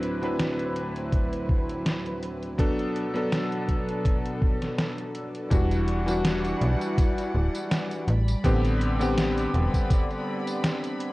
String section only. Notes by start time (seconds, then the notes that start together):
Already playing: D2 A2 F#3 C4 E4 B4
2.59 B2 D4 A4
5.51 G3 E4 D5 F#5
8.08 D5 B5